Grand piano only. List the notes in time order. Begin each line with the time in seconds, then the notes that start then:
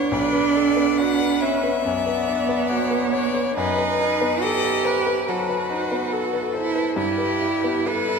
Already playing: D2 B3 D4 F#4 B4 C#5
0.12 B1
0.33 B4
0.55 D4
0.77 B3
0.99 F#4
1.20 B4
1.42 C#5
1.63 B4
1.85 F#2
2.07 B4
2.28 D4
2.49 B3
2.70 F#4
2.91 B4
3.13 C#5
3.34 B4
3.57 F#2
3.78 B4
4.01 D#4
4.21 B3
4.43 A4
4.64 B4
4.85 C5
5.06 B4
5.29 F#3
5.49 B4
5.70 D#4
5.91 B3
6.12 A4
6.33 B4
6.54 C5
6.76 B4
6.96 G2
7.18 B4
7.41 E4
7.64 B3
7.86 B4
8.09 E4